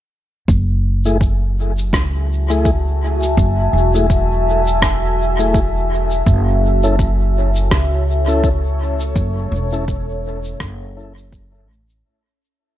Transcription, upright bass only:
0.48 1.90 F#1 medium
1.93 3.34 C#2 medium
3.37 3.70 F#1 medium
3.73 6.23 E1 medium
6.26 7.68 F#1 medium
7.71 9.13 C#2 medium
9.16 9.48 F#1 medium
9.52 10.60 E1 medium
10.60 11.68 F#1 medium
11.68 12.01 A1 loud

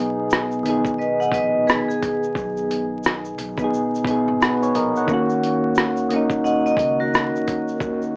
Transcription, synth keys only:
0.00 0.60 B2 medium
0.00 0.61 B3 medium
0.00 0.62 D#4 medium
0.00 0.63 G#4 loud
0.63 1.94 D#3 medium
0.63 1.95 B3 medium
0.68 1.96 D#4 medium
0.68 1.97 G#4 medium
3.57 4.02 B2 medium
3.57 4.03 B3 medium
3.62 4.04 D#4 medium
3.62 4.06 G#4 medium
4.04 5.02 B2 medium
4.04 5.03 B3 medium
4.08 5.04 D#4 medium
4.08 4.42 G#4 loud
4.42 4.62 F#4 medium
4.42 4.61 B4 medium
4.63 4.74 G#4 medium
4.63 4.74 C#5 medium
4.76 4.96 A#4 medium
4.76 4.95 D#5 medium
4.97 5.29 C#5 medium
4.97 5.29 F#5 medium
5.07 6.05 D#3 loud
5.07 6.06 A#3 medium
5.11 6.07 C#4 medium
5.11 6.08 F#4 loud
6.10 7.40 D#3 medium
6.10 7.41 A#3 medium
6.14 7.42 C#4 medium
6.14 7.43 D#4 medium

